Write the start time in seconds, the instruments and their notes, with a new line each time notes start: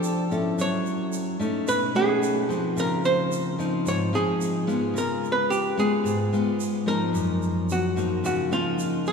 Already playing: nylon-string guitar F3 D4 A4 C5, hollow-body jazz guitar A4
0.03 shaker
0.31 nylon-string guitar C#4 E4 A4, shaker
0.58 nylon-string guitar F#3, hollow-body jazz guitar C#5, shaker
0.86 shaker
1.13 shaker
1.39 nylon-string guitar A3 C#4 D#4, shaker
1.68 nylon-string guitar B2, hollow-body jazz guitar B4, shaker
1.95 nylon-string guitar A3 C#4 D#4, hollow-body jazz guitar G#4, shaker
2.23 shaker
2.49 nylon-string guitar F3 C4 D#4, shaker
2.77 nylon-string guitar C#3, hollow-body jazz guitar A#4, shaker
3.04 hollow-body jazz guitar C5, shaker
3.32 shaker
3.59 nylon-string guitar F3 C4 D#4, shaker
3.85 nylon-string guitar G#2, hollow-body jazz guitar C#5, shaker
4.13 nylon-string guitar F3 C4 D#4, hollow-body jazz guitar G#4, shaker
4.41 shaker
4.67 nylon-string guitar G#3 B3 F4, shaker
4.94 nylon-string guitar C#3, shaker
4.98 hollow-body jazz guitar A#4
5.25 shaker
5.32 hollow-body jazz guitar B4
5.50 hollow-body jazz guitar G4, shaker
5.77 nylon-string guitar G#3 B3 F4, hollow-body jazz guitar G#4, shaker
6.04 nylon-string guitar G#2, shaker
6.33 nylon-string guitar G#3 B3 F4, shaker
6.60 shaker
6.86 nylon-string guitar F3 A#3 D#4, hollow-body jazz guitar A#4, shaker
7.13 nylon-string guitar F#2, shaker
7.42 shaker
7.69 hollow-body jazz guitar F#4, shaker
7.96 nylon-string guitar F3 A#3 D#4, shaker
8.24 nylon-string guitar C#3, hollow-body jazz guitar F#4, shaker
8.51 nylon-string guitar F3 A#3 D#4, hollow-body jazz guitar F4, shaker
8.79 shaker
9.06 hollow-body jazz guitar A#4, shaker